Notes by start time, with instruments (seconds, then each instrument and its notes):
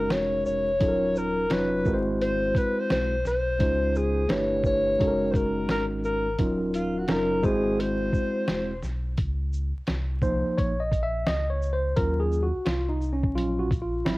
Already playing: tine electric piano G#3 C#4 D#4 F#4 A#4
0.00 alto saxophone A#4
0.10 sub bass F1, alto saxophone C#5, snare, closed hi-hat
0.45 sub bass F1, alto saxophone C#5, shaker
0.80 sub bass D#1, tine electric piano F#3 C#4 D#4 F4 A4, kick, closed hi-hat
0.88 tine electric piano A#4
1.16 alto saxophone A#4, shaker
1.50 sub bass F1, tine electric piano F#3 C#4 D#4 F4 C#5, alto saxophone B4, snare, closed hi-hat
1.85 sub bass G#1, tine electric piano G#3 C4 E4 F#4 A#4, kick, shaker
1.94 tine electric piano C5
2.22 alto saxophone C5, closed hi-hat
2.55 alto saxophone B4, kick, closed hi-hat, shaker
2.79 alto saxophone C5
2.90 sub bass B1, alto saxophone C5, snare, closed hi-hat
3.25 sub bass B1, alto saxophone C5, snare, shaker
3.59 sub bass C#2, tine electric piano G#3 C#4 D#4 F4 C5, kick, closed hi-hat
3.95 alto saxophone G#4, shaker
4.28 sub bass G1, tine electric piano A3 D4 E4 G4 B4, alto saxophone C#5, snare, closed hi-hat
4.64 alto saxophone C#5, kick, shaker
4.99 sub bass F#1, tine electric piano G#3 C#4 D#4 F#4 A4, kick, closed hi-hat
5.07 tine electric piano A#4
5.31 alto saxophone C5, kick, closed hi-hat, shaker
5.36 alto saxophone A#4
5.69 sub bass G#1, alto saxophone A#4, snare, closed hi-hat
6.04 alto saxophone A#4, shaker
6.39 sub bass D#1, tine electric piano F#3 C#4 D#4 F4 A#4, kick, closed hi-hat
6.74 alto saxophone F4, closed hi-hat, shaker
6.98 alto saxophone F#4
7.08 sub bass F#1, tine electric piano F#3 C#4 D#4 F4 A#4, alto saxophone A#4, snare, closed hi-hat
7.42 sub bass G#1, tine electric piano G#3 C4 E4 F#4 C5, alto saxophone G#4, kick, shaker
7.80 alto saxophone C5, closed hi-hat
8.13 kick, shaker
8.48 sub bass E1, snare, closed hi-hat
8.83 sub bass B1, snare, shaker
9.18 sub bass C#2, kick, closed hi-hat
9.53 shaker
9.76 sub bass C2
9.87 sub bass C2, snare, closed hi-hat
10.22 tine electric piano F3 A#3 D#4 C5, kick, shaker
10.46 sub bass A#1
10.58 sub bass A#1, tine electric piano C#5, kick, closed hi-hat
10.80 tine electric piano D#5
10.92 kick, closed hi-hat, shaker
11.03 tine electric piano E5
11.27 sub bass C#2, tine electric piano D#5, snare, closed hi-hat
11.50 tine electric piano C#5
11.62 shaker
11.73 tine electric piano C5
11.96 sub bass D#2, tine electric piano F#3 C#4 F4 A#4, kick, closed hi-hat
12.20 tine electric piano G#4
12.32 shaker
12.43 tine electric piano F#4
12.54 sub bass C2
12.65 sub bass C2, tine electric piano F4, snare, closed hi-hat
12.89 tine electric piano D#4
13.01 shaker
13.13 tine electric piano C#4
13.23 kick
13.36 sub bass A#1, tine electric piano F#3 C#4 F4, closed hi-hat
13.59 tine electric piano F#4
13.71 kick, closed hi-hat, shaker
13.82 tine electric piano F4
14.05 sub bass G#1, tine electric piano F#3 C4 E4, snare, closed hi-hat